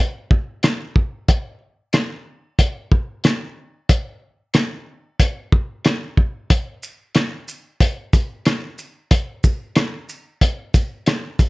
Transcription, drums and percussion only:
0.31 kick
0.63 cross-stick, snare, closed hi-hat
0.96 kick
1.28 kick, closed hi-hat
1.93 cross-stick, snare, closed hi-hat
2.59 kick, closed hi-hat
2.92 kick
3.24 cross-stick, snare, closed hi-hat
3.89 kick, closed hi-hat
4.54 cross-stick, snare, closed hi-hat
5.20 kick, closed hi-hat
5.52 kick
5.85 cross-stick, snare, closed hi-hat
6.17 kick
6.50 kick, closed hi-hat
6.83 shaker
7.15 cross-stick, snare, closed hi-hat
7.48 shaker
7.80 kick, closed hi-hat
8.13 kick, closed hi-hat, shaker
8.45 cross-stick, snare, closed hi-hat
8.78 shaker
9.11 kick, closed hi-hat
9.44 kick, shaker
9.76 cross-stick, snare, closed hi-hat
10.09 shaker
10.41 kick, closed hi-hat
10.74 kick, closed hi-hat, shaker
11.06 cross-stick, snare, closed hi-hat
11.39 kick, closed hi-hat, shaker

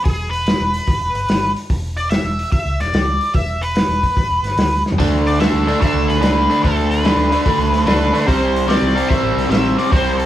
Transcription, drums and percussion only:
0.05 kick, open hi-hat
0.33 open hi-hat
0.47 snare, open hi-hat
0.74 open hi-hat
0.87 kick, open hi-hat
1.15 open hi-hat
1.28 snare, open hi-hat
1.56 open hi-hat
1.70 kick, open hi-hat
1.97 open hi-hat
2.11 snare, open hi-hat
2.39 open hi-hat
2.52 kick, open hi-hat
2.80 snare, open hi-hat
2.94 snare, open hi-hat
3.21 open hi-hat
3.34 kick, open hi-hat
3.63 open hi-hat
3.75 snare, open hi-hat
4.03 kick, open hi-hat
4.17 kick, open hi-hat
4.44 snare, open hi-hat
4.57 snare, open hi-hat
4.86 snare
4.92 floor tom
4.99 kick, open hi-hat, splash
5.27 open hi-hat
5.40 snare, open hi-hat
5.68 open hi-hat
5.82 kick, open hi-hat
6.10 snare, open hi-hat
6.23 snare, open hi-hat
6.51 open hi-hat
6.64 kick, open hi-hat
6.91 open hi-hat
7.05 snare, open hi-hat
7.32 open hi-hat
7.46 kick, open hi-hat
7.74 snare, open hi-hat
7.87 snare, open hi-hat
8.15 open hi-hat
8.28 kick, open hi-hat
8.56 open hi-hat
8.70 snare, open hi-hat
8.97 open hi-hat
9.10 kick, open hi-hat
9.38 snare, open hi-hat
9.51 snare, open hi-hat
9.79 open hi-hat
9.92 kick, open hi-hat
10.20 open hi-hat

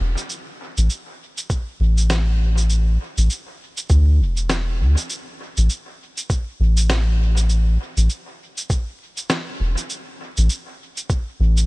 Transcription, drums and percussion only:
0.18 shaker
0.30 shaker
0.77 shaker
0.90 shaker
1.37 shaker
1.50 kick, shaker
1.98 shaker
2.10 snare, shaker
2.58 shaker
2.70 shaker
3.18 shaker
3.30 shaker
3.77 shaker
3.89 kick, shaker
4.37 shaker
4.50 snare, shaker
4.97 shaker
5.10 shaker
5.57 shaker
5.70 shaker
6.17 shaker
6.30 kick, shaker
6.77 shaker
6.90 snare, shaker
7.37 shaker
7.49 shaker
7.97 shaker
8.10 shaker
8.57 shaker
8.70 kick, shaker
9.17 shaker
9.30 snare, shaker
9.77 shaker
9.90 shaker
10.37 shaker
10.50 shaker
10.97 shaker
11.10 kick, shaker
11.57 shaker

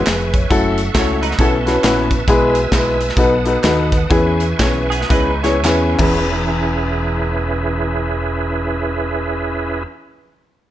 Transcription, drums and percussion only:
0.06 snare, clap, closed hi-hat, tambourine
0.34 kick, closed hi-hat, tambourine
0.50 kick, closed hi-hat, tambourine
0.77 closed hi-hat, tambourine
0.95 kick, snare, clap, closed hi-hat, tambourine
1.23 closed hi-hat, tambourine
1.31 snare
1.39 kick, closed hi-hat, tambourine
1.67 snare, closed hi-hat, tambourine
1.84 snare, clap, closed hi-hat, tambourine
2.11 kick, closed hi-hat, tambourine
2.28 kick, closed hi-hat, tambourine
2.55 closed hi-hat, tambourine
2.72 kick, snare, clap, closed hi-hat, tambourine
3.01 closed hi-hat, tambourine
3.09 snare
3.17 kick, closed hi-hat, tambourine
3.45 closed hi-hat, tambourine
3.63 snare, clap, closed hi-hat, tambourine
3.92 kick, closed hi-hat, tambourine
4.10 kick, closed hi-hat, tambourine
4.40 closed hi-hat, tambourine
4.59 kick, snare, clap, closed hi-hat, tambourine
4.91 closed hi-hat, tambourine
5.01 snare
5.10 kick, closed hi-hat, tambourine
5.44 snare, closed hi-hat, tambourine
5.64 snare, clap, tambourine
5.99 kick, clap, crash

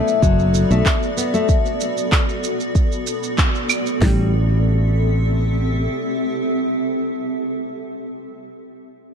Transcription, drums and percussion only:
0.08 shaker
0.23 kick, shaker
0.39 shaker
0.54 shaker
0.71 shaker
0.86 kick, clap, shaker
1.03 shaker
1.18 shaker
1.34 shaker
1.49 kick, shaker
1.66 shaker
1.80 shaker
1.97 shaker
2.12 kick, clap, shaker
2.29 shaker
2.44 shaker
2.60 shaker
2.75 kick, shaker
2.92 shaker
3.07 shaker
3.23 shaker
3.38 kick, clap, shaker
3.55 shaker
3.69 claves, shaker
3.86 shaker
4.02 kick, snare, open hi-hat

